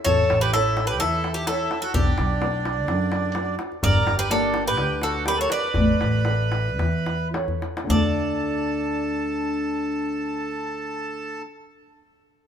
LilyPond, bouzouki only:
\new Staff \with { instrumentName = "Bouzouki" } { \time 4/4 \key d \major \tempo 4 = 120 cis''8. b'16 a'8. b'16 a'8. g'16 a'8. a'16 | g'2.~ g'8 r8 | d''8. b'16 a'8. b'8. a'8 b'16 cis''16 d''8~ | d''2. r4 |
d''1~ | d''1 | }